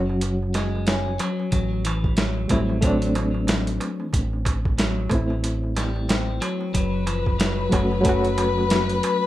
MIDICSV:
0, 0, Header, 1, 7, 480
1, 0, Start_track
1, 0, Tempo, 652174
1, 1121, Time_signature, 4, 2, 24, 8
1, 6820, End_track
2, 0, Start_track
2, 0, Title_t, "String section"
2, 0, Program_c, 0, 48
2, 4960, Note_on_c, 0, 71, 74
2, 6820, Note_off_c, 0, 71, 0
2, 6820, End_track
3, 0, Start_track
3, 0, Title_t, "Reed electric piano"
3, 0, Program_c, 1, 4
3, 0, Note_on_c, 1, 54, 79
3, 0, Note_on_c, 1, 61, 74
3, 0, Note_on_c, 1, 66, 88
3, 1092, Note_off_c, 1, 54, 0
3, 1112, Note_off_c, 1, 61, 0
3, 1123, Note_off_c, 1, 66, 0
3, 1825, Note_on_c, 1, 55, 77
3, 1839, Note_on_c, 1, 57, 72
3, 1846, Note_on_c, 1, 60, 72
3, 1856, Note_on_c, 1, 64, 89
3, 2049, Note_off_c, 1, 55, 0
3, 2056, Note_off_c, 1, 57, 0
3, 2060, Note_off_c, 1, 60, 0
3, 2065, Note_off_c, 1, 64, 0
3, 2067, Note_on_c, 1, 57, 79
3, 2090, Note_on_c, 1, 60, 81
3, 2111, Note_on_c, 1, 62, 92
3, 3730, Note_off_c, 1, 57, 0
3, 3742, Note_off_c, 1, 60, 0
3, 3750, Note_on_c, 1, 57, 73
3, 3752, Note_off_c, 1, 62, 0
3, 3769, Note_on_c, 1, 60, 72
3, 3790, Note_on_c, 1, 64, 85
3, 4943, Note_off_c, 1, 57, 0
3, 4953, Note_off_c, 1, 60, 0
3, 4964, Note_off_c, 1, 64, 0
3, 5663, Note_on_c, 1, 54, 71
3, 5676, Note_on_c, 1, 57, 75
3, 5684, Note_on_c, 1, 61, 68
3, 5698, Note_on_c, 1, 66, 83
3, 5884, Note_off_c, 1, 54, 0
3, 5893, Note_on_c, 1, 54, 84
3, 5895, Note_off_c, 1, 57, 0
3, 5899, Note_off_c, 1, 61, 0
3, 5906, Note_off_c, 1, 66, 0
3, 5912, Note_on_c, 1, 57, 78
3, 5933, Note_on_c, 1, 61, 75
3, 5955, Note_on_c, 1, 66, 91
3, 6820, Note_off_c, 1, 54, 0
3, 6820, Note_off_c, 1, 57, 0
3, 6820, Note_off_c, 1, 61, 0
3, 6820, Note_off_c, 1, 66, 0
3, 6820, End_track
4, 0, Start_track
4, 0, Title_t, "Clean electric guitar"
4, 0, Program_c, 2, 27
4, 400, Note_on_c, 2, 56, 69
4, 630, Note_off_c, 2, 56, 0
4, 640, Note_on_c, 2, 61, 67
4, 870, Note_off_c, 2, 61, 0
4, 879, Note_on_c, 2, 54, 97
4, 1100, Note_off_c, 2, 54, 0
4, 1120, Note_on_c, 2, 54, 75
4, 1351, Note_off_c, 2, 54, 0
4, 1362, Note_on_c, 2, 52, 75
4, 1582, Note_off_c, 2, 52, 0
4, 1598, Note_on_c, 2, 54, 68
4, 1830, Note_off_c, 2, 54, 0
4, 1837, Note_on_c, 2, 54, 68
4, 2066, Note_off_c, 2, 54, 0
4, 2074, Note_on_c, 2, 54, 86
4, 3018, Note_off_c, 2, 54, 0
4, 3523, Note_on_c, 2, 54, 73
4, 3752, Note_off_c, 2, 54, 0
4, 4244, Note_on_c, 2, 55, 67
4, 4472, Note_off_c, 2, 55, 0
4, 4483, Note_on_c, 2, 60, 69
4, 4712, Note_off_c, 2, 60, 0
4, 4720, Note_on_c, 2, 54, 97
4, 4940, Note_off_c, 2, 54, 0
4, 4959, Note_on_c, 2, 54, 69
4, 5190, Note_off_c, 2, 54, 0
4, 5203, Note_on_c, 2, 53, 71
4, 5422, Note_off_c, 2, 53, 0
4, 5440, Note_on_c, 2, 54, 67
4, 5671, Note_off_c, 2, 54, 0
4, 5684, Note_on_c, 2, 54, 70
4, 5913, Note_off_c, 2, 54, 0
4, 5920, Note_on_c, 2, 54, 80
4, 6820, Note_off_c, 2, 54, 0
4, 6820, End_track
5, 0, Start_track
5, 0, Title_t, "Fingered electric bass"
5, 0, Program_c, 3, 33
5, 0, Note_on_c, 3, 30, 85
5, 863, Note_off_c, 3, 30, 0
5, 1123, Note_on_c, 3, 33, 93
5, 1823, Note_off_c, 3, 33, 0
5, 1841, Note_on_c, 3, 33, 82
5, 2782, Note_off_c, 3, 33, 0
5, 3047, Note_on_c, 3, 33, 92
5, 3745, Note_off_c, 3, 33, 0
5, 3765, Note_on_c, 3, 33, 77
5, 4704, Note_off_c, 3, 33, 0
5, 4965, Note_on_c, 3, 30, 93
5, 5664, Note_off_c, 3, 30, 0
5, 5687, Note_on_c, 3, 30, 82
5, 6625, Note_off_c, 3, 30, 0
5, 6820, End_track
6, 0, Start_track
6, 0, Title_t, "Darbuka"
6, 69, Note_on_c, 9, 63, 38
6, 143, Note_off_c, 9, 63, 0
6, 164, Note_on_c, 9, 63, 54
6, 238, Note_off_c, 9, 63, 0
6, 312, Note_on_c, 9, 63, 25
6, 386, Note_off_c, 9, 63, 0
6, 403, Note_on_c, 9, 63, 80
6, 477, Note_off_c, 9, 63, 0
6, 554, Note_on_c, 9, 63, 42
6, 628, Note_off_c, 9, 63, 0
6, 656, Note_on_c, 9, 63, 51
6, 729, Note_off_c, 9, 63, 0
6, 792, Note_on_c, 9, 63, 26
6, 865, Note_off_c, 9, 63, 0
6, 884, Note_on_c, 9, 63, 99
6, 957, Note_off_c, 9, 63, 0
6, 1027, Note_on_c, 9, 63, 37
6, 1101, Note_off_c, 9, 63, 0
6, 1121, Note_on_c, 9, 63, 51
6, 1195, Note_off_c, 9, 63, 0
6, 1271, Note_on_c, 9, 63, 22
6, 1345, Note_off_c, 9, 63, 0
6, 1373, Note_on_c, 9, 63, 86
6, 1446, Note_off_c, 9, 63, 0
6, 1514, Note_on_c, 9, 63, 38
6, 1587, Note_off_c, 9, 63, 0
6, 1603, Note_on_c, 9, 63, 44
6, 1676, Note_off_c, 9, 63, 0
6, 1744, Note_on_c, 9, 63, 25
6, 1818, Note_off_c, 9, 63, 0
6, 1843, Note_on_c, 9, 63, 92
6, 1917, Note_off_c, 9, 63, 0
6, 1982, Note_on_c, 9, 63, 38
6, 2056, Note_off_c, 9, 63, 0
6, 2085, Note_on_c, 9, 63, 55
6, 2159, Note_off_c, 9, 63, 0
6, 2224, Note_on_c, 9, 63, 24
6, 2298, Note_off_c, 9, 63, 0
6, 2322, Note_on_c, 9, 63, 84
6, 2395, Note_off_c, 9, 63, 0
6, 2461, Note_on_c, 9, 63, 38
6, 2535, Note_off_c, 9, 63, 0
6, 2556, Note_on_c, 9, 63, 50
6, 2629, Note_off_c, 9, 63, 0
6, 2704, Note_on_c, 9, 63, 25
6, 2777, Note_off_c, 9, 63, 0
6, 2800, Note_on_c, 9, 63, 79
6, 2874, Note_off_c, 9, 63, 0
6, 2942, Note_on_c, 9, 63, 37
6, 3015, Note_off_c, 9, 63, 0
6, 3037, Note_on_c, 9, 63, 46
6, 3111, Note_off_c, 9, 63, 0
6, 3187, Note_on_c, 9, 63, 24
6, 3261, Note_off_c, 9, 63, 0
6, 3277, Note_on_c, 9, 63, 89
6, 3351, Note_off_c, 9, 63, 0
6, 3425, Note_on_c, 9, 63, 38
6, 3499, Note_off_c, 9, 63, 0
6, 3519, Note_on_c, 9, 63, 55
6, 3593, Note_off_c, 9, 63, 0
6, 3666, Note_on_c, 9, 63, 22
6, 3740, Note_off_c, 9, 63, 0
6, 3750, Note_on_c, 9, 63, 86
6, 3824, Note_off_c, 9, 63, 0
6, 3902, Note_on_c, 9, 63, 39
6, 3976, Note_off_c, 9, 63, 0
6, 4005, Note_on_c, 9, 63, 50
6, 4079, Note_off_c, 9, 63, 0
6, 4148, Note_on_c, 9, 63, 23
6, 4221, Note_off_c, 9, 63, 0
6, 4243, Note_on_c, 9, 63, 86
6, 4317, Note_off_c, 9, 63, 0
6, 4386, Note_on_c, 9, 63, 41
6, 4460, Note_off_c, 9, 63, 0
6, 4481, Note_on_c, 9, 63, 49
6, 4555, Note_off_c, 9, 63, 0
6, 4623, Note_on_c, 9, 63, 26
6, 4696, Note_off_c, 9, 63, 0
6, 4724, Note_on_c, 9, 63, 85
6, 4798, Note_off_c, 9, 63, 0
6, 4863, Note_on_c, 9, 63, 38
6, 4937, Note_off_c, 9, 63, 0
6, 4962, Note_on_c, 9, 63, 50
6, 5035, Note_off_c, 9, 63, 0
6, 5102, Note_on_c, 9, 63, 22
6, 5176, Note_off_c, 9, 63, 0
6, 5202, Note_on_c, 9, 63, 79
6, 5275, Note_off_c, 9, 63, 0
6, 5349, Note_on_c, 9, 63, 37
6, 5423, Note_off_c, 9, 63, 0
6, 5444, Note_on_c, 9, 63, 43
6, 5518, Note_off_c, 9, 63, 0
6, 5598, Note_on_c, 9, 63, 24
6, 5671, Note_off_c, 9, 63, 0
6, 5689, Note_on_c, 9, 63, 83
6, 5763, Note_off_c, 9, 63, 0
6, 5827, Note_on_c, 9, 63, 40
6, 5901, Note_off_c, 9, 63, 0
6, 5930, Note_on_c, 9, 63, 55
6, 6003, Note_off_c, 9, 63, 0
6, 6078, Note_on_c, 9, 63, 26
6, 6152, Note_off_c, 9, 63, 0
6, 6167, Note_on_c, 9, 63, 90
6, 6240, Note_off_c, 9, 63, 0
6, 6313, Note_on_c, 9, 63, 43
6, 6387, Note_off_c, 9, 63, 0
6, 6412, Note_on_c, 9, 63, 45
6, 6485, Note_off_c, 9, 63, 0
6, 6548, Note_on_c, 9, 63, 23
6, 6622, Note_off_c, 9, 63, 0
6, 6652, Note_on_c, 9, 63, 86
6, 6726, Note_off_c, 9, 63, 0
6, 6820, End_track
7, 0, Start_track
7, 0, Title_t, "Drums"
7, 157, Note_on_c, 9, 42, 77
7, 231, Note_off_c, 9, 42, 0
7, 398, Note_on_c, 9, 42, 62
7, 406, Note_on_c, 9, 38, 46
7, 472, Note_off_c, 9, 42, 0
7, 479, Note_off_c, 9, 38, 0
7, 638, Note_on_c, 9, 42, 80
7, 645, Note_on_c, 9, 38, 111
7, 711, Note_off_c, 9, 42, 0
7, 718, Note_off_c, 9, 38, 0
7, 879, Note_on_c, 9, 42, 64
7, 952, Note_off_c, 9, 42, 0
7, 1119, Note_on_c, 9, 42, 83
7, 1121, Note_on_c, 9, 36, 94
7, 1192, Note_off_c, 9, 42, 0
7, 1195, Note_off_c, 9, 36, 0
7, 1360, Note_on_c, 9, 42, 69
7, 1433, Note_off_c, 9, 42, 0
7, 1502, Note_on_c, 9, 36, 89
7, 1576, Note_off_c, 9, 36, 0
7, 1595, Note_on_c, 9, 42, 82
7, 1602, Note_on_c, 9, 38, 110
7, 1669, Note_off_c, 9, 42, 0
7, 1676, Note_off_c, 9, 38, 0
7, 1835, Note_on_c, 9, 42, 64
7, 1840, Note_on_c, 9, 36, 87
7, 1909, Note_off_c, 9, 42, 0
7, 1913, Note_off_c, 9, 36, 0
7, 2078, Note_on_c, 9, 42, 78
7, 2080, Note_on_c, 9, 36, 101
7, 2152, Note_off_c, 9, 42, 0
7, 2153, Note_off_c, 9, 36, 0
7, 2222, Note_on_c, 9, 42, 41
7, 2296, Note_off_c, 9, 42, 0
7, 2320, Note_on_c, 9, 42, 61
7, 2394, Note_off_c, 9, 42, 0
7, 2561, Note_on_c, 9, 42, 85
7, 2569, Note_on_c, 9, 38, 117
7, 2635, Note_off_c, 9, 42, 0
7, 2642, Note_off_c, 9, 38, 0
7, 2703, Note_on_c, 9, 42, 40
7, 2776, Note_off_c, 9, 42, 0
7, 2804, Note_on_c, 9, 42, 62
7, 2877, Note_off_c, 9, 42, 0
7, 3043, Note_on_c, 9, 36, 99
7, 3045, Note_on_c, 9, 42, 83
7, 3117, Note_off_c, 9, 36, 0
7, 3119, Note_off_c, 9, 42, 0
7, 3284, Note_on_c, 9, 36, 90
7, 3285, Note_on_c, 9, 42, 66
7, 3357, Note_off_c, 9, 36, 0
7, 3359, Note_off_c, 9, 42, 0
7, 3425, Note_on_c, 9, 36, 94
7, 3499, Note_off_c, 9, 36, 0
7, 3522, Note_on_c, 9, 42, 81
7, 3529, Note_on_c, 9, 38, 114
7, 3595, Note_off_c, 9, 42, 0
7, 3603, Note_off_c, 9, 38, 0
7, 3761, Note_on_c, 9, 42, 65
7, 3763, Note_on_c, 9, 36, 82
7, 3835, Note_off_c, 9, 42, 0
7, 3836, Note_off_c, 9, 36, 0
7, 4002, Note_on_c, 9, 42, 76
7, 4075, Note_off_c, 9, 42, 0
7, 4243, Note_on_c, 9, 42, 65
7, 4250, Note_on_c, 9, 38, 48
7, 4317, Note_off_c, 9, 42, 0
7, 4324, Note_off_c, 9, 38, 0
7, 4485, Note_on_c, 9, 42, 87
7, 4492, Note_on_c, 9, 38, 117
7, 4558, Note_off_c, 9, 42, 0
7, 4566, Note_off_c, 9, 38, 0
7, 4724, Note_on_c, 9, 42, 59
7, 4797, Note_off_c, 9, 42, 0
7, 4965, Note_on_c, 9, 36, 95
7, 4965, Note_on_c, 9, 42, 83
7, 5039, Note_off_c, 9, 36, 0
7, 5039, Note_off_c, 9, 42, 0
7, 5203, Note_on_c, 9, 42, 61
7, 5277, Note_off_c, 9, 42, 0
7, 5346, Note_on_c, 9, 36, 92
7, 5420, Note_off_c, 9, 36, 0
7, 5444, Note_on_c, 9, 42, 85
7, 5452, Note_on_c, 9, 38, 105
7, 5518, Note_off_c, 9, 42, 0
7, 5525, Note_off_c, 9, 38, 0
7, 5683, Note_on_c, 9, 42, 59
7, 5685, Note_on_c, 9, 36, 86
7, 5757, Note_off_c, 9, 42, 0
7, 5759, Note_off_c, 9, 36, 0
7, 5923, Note_on_c, 9, 42, 77
7, 5926, Note_on_c, 9, 36, 99
7, 5996, Note_off_c, 9, 42, 0
7, 5999, Note_off_c, 9, 36, 0
7, 6069, Note_on_c, 9, 42, 43
7, 6142, Note_off_c, 9, 42, 0
7, 6165, Note_on_c, 9, 42, 62
7, 6239, Note_off_c, 9, 42, 0
7, 6405, Note_on_c, 9, 42, 86
7, 6413, Note_on_c, 9, 38, 113
7, 6479, Note_off_c, 9, 42, 0
7, 6486, Note_off_c, 9, 38, 0
7, 6546, Note_on_c, 9, 42, 37
7, 6620, Note_off_c, 9, 42, 0
7, 6648, Note_on_c, 9, 42, 63
7, 6721, Note_off_c, 9, 42, 0
7, 6820, End_track
0, 0, End_of_file